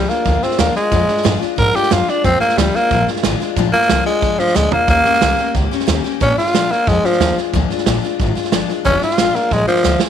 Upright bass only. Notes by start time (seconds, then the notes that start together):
0.10 muted upright bass stroke
0.26 D2
0.59 D#2
0.92 F2
1.09 muted upright bass stroke
1.25 G2
1.43 muted upright bass stroke
1.58 G#2
1.76 muted upright bass stroke
1.92 F#2
2.08 muted upright bass stroke
2.25 F2
2.41 muted upright bass stroke
2.57 D2
2.91 A#1
3.07 muted upright bass stroke
3.24 G#1
3.56 A#1
3.74 muted upright bass stroke
3.90 C2
4.23 A#1
4.39 muted upright bass stroke
4.56 D2
4.88 D#2
5.05 muted upright bass stroke
5.22 C2
5.54 C#2
5.72 muted upright bass stroke
5.88 D#2
6.21 A#2
6.37 muted upright bass stroke
6.54 G2
6.71 muted upright bass stroke
6.88 F2
7.03 muted upright bass stroke
7.20 D#2
7.53 D2
7.70 muted upright bass stroke
7.86 A#1
8.03 muted upright bass stroke
8.20 G#1
8.37 muted upright bass stroke
8.53 G1
8.69 muted upright bass stroke
8.85 F1
9.18 G#1
9.51 A#1
9.67 muted upright bass stroke
9.85 D2